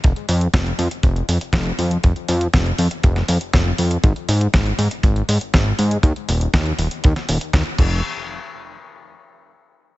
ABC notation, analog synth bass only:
X:1
M:4/4
L:1/8
Q:1/4=120
K:Fm
V:1 name="Analog synth bass" clef=bass
F,,, F,, F,,, F,, F,,, F,, F,,, F,, | F,,, F,, F,,, F,, F,,, F,, F,,, F,, | A,,, A,, A,,, A,, A,,, A,, A,,, A,, | E,, E,,, E,, E,,, E,, E,,, E,, F,,, |
z8 |]